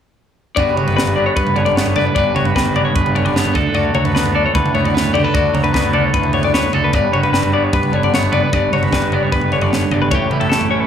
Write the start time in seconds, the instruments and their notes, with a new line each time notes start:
0.56 fingered electric bass G1, clean electric guitar G2 G3 B3 F#4 B4 D5, kick, floor tom
0.75 fingered electric bass G1, clean electric guitar F#4 C#5, mid tom
0.86 clean electric guitar B4, floor tom
0.96 clean electric guitar G3 B4, snare
1.07 floor tom
1.16 clean electric guitar B3 D5
1.26 clean electric guitar C#5
1.36 fingered electric bass G2, clean electric guitar B4, kick, floor tom
1.47 mid tom
1.55 fingered electric bass G1, clean electric guitar D3 C#5, floor tom
1.65 clean electric guitar D5, floor tom
1.76 clean electric guitar B3 C#5, snare
1.86 floor tom
1.96 clean electric guitar B4 D5, floor tom, mid tom
2.05 clean electric guitar B4
2.15 fingered electric bass G1, clean electric guitar G2 B4 D5, kick, floor tom
2.34 fingered electric bass G1, clean electric guitar F#4 C#5, floor tom, mid tom
2.45 clean electric guitar B4, floor tom
2.56 fingered electric bass G1, clean electric guitar G3 B4, kick, snare
2.65 floor tom
2.75 clean electric guitar B3 D5, mid tom
2.85 clean electric guitar C#5
2.95 fingered electric bass G1, clean electric guitar B4, kick, floor tom
3.06 mid tom
3.15 clean electric guitar D3 C#5, floor tom
3.25 clean electric guitar D5, floor tom
3.35 clean electric guitar B3 C#5, snare
3.45 floor tom
3.54 fingered electric bass D2, clean electric guitar D3 A4 D5, kick, floor tom, mid tom
3.65 clean electric guitar B4
3.74 fingered electric bass D2, clean electric guitar F#4 D5, floor tom
3.94 fingered electric bass D2, clean electric guitar F#3 C#5, mid tom
4.05 clean electric guitar B4, floor tom
4.15 clean electric guitar B3 B4, snare
4.26 floor tom
4.35 clean electric guitar A4 D5
4.46 clean electric guitar C#5
4.53 clean electric guitar A2 B4, fingered electric bass D3, kick, floor tom
4.66 mid tom
4.74 fingered electric bass D2, clean electric guitar B3 C#5, floor tom
4.84 clean electric guitar D5, floor tom
4.94 clean electric guitar B4 C#5, snare
5.05 floor tom
5.13 clean electric guitar D3 G4 D5, floor tom, mid tom
5.24 clean electric guitar A4 B4
5.34 fingered electric bass D2, clean electric guitar F#4 D5, kick, floor tom
5.54 fingered electric bass D2, clean electric guitar F#3 C#5, floor tom, mid tom
5.64 clean electric guitar B4, floor tom
5.73 fingered electric bass D2, clean electric guitar B3 B4, kick, snare
5.83 floor tom
5.93 clean electric guitar A4 D5, mid tom
6.04 clean electric guitar C#5
6.13 fingered electric bass D2, clean electric guitar A2 B4, kick, floor tom
6.23 mid tom
6.33 clean electric guitar B3 C#5, floor tom
6.43 clean electric guitar D5, floor tom
6.54 clean electric guitar B4 C#5, snare
6.63 floor tom
6.73 fingered electric bass D2, clean electric guitar D3 A4 D5, floor tom, mid tom
6.84 clean electric guitar B4
6.93 fingered electric bass G1, clean electric guitar G2 B4 D5, kick, floor tom
7.12 fingered electric bass G1, clean electric guitar F#4 C#5, mid tom
7.23 clean electric guitar B4, floor tom
7.33 clean electric guitar G3 B4, snare
7.43 floor tom
7.53 clean electric guitar B3 D5
7.64 clean electric guitar C#5
7.73 fingered electric bass G2, clean electric guitar B4, kick, floor tom
7.83 mid tom
7.92 fingered electric bass G1, clean electric guitar D3 C#5, floor tom
8.03 clean electric guitar D5, floor tom
8.14 clean electric guitar B3 C#5, snare
8.23 floor tom
8.32 clean electric guitar B4 D5, floor tom, mid tom
8.43 clean electric guitar B4
8.53 fingered electric bass G1, clean electric guitar G2 B4 D5, kick, floor tom
8.72 fingered electric bass G1, clean electric guitar F#4 C#5, floor tom, mid tom
8.83 clean electric guitar B4, floor tom
8.92 fingered electric bass G1, clean electric guitar G3 B4, kick, snare
9.02 floor tom
9.12 clean electric guitar B3 D5, mid tom
9.23 clean electric guitar C#5
9.32 fingered electric bass G1, clean electric guitar B4, kick, floor tom
9.41 mid tom
9.52 clean electric guitar D3 C#5, floor tom
9.62 clean electric guitar D5, floor tom
9.72 clean electric guitar C#5, snare
9.81 floor tom
9.90 fingered electric bass G1, clean electric guitar G2 D5, floor tom, mid tom
10.02 clean electric guitar B4
10.11 fingered electric bass A1, clean electric guitar A2 G4 C#5, kick, floor tom
10.30 fingered electric bass A1, clean electric guitar E4 B4, mid tom
10.40 clean electric guitar A4, floor tom
10.49 clean electric guitar A3 A4, snare
10.61 floor tom
10.71 clean electric guitar C#4 C#5
10.80 clean electric guitar B4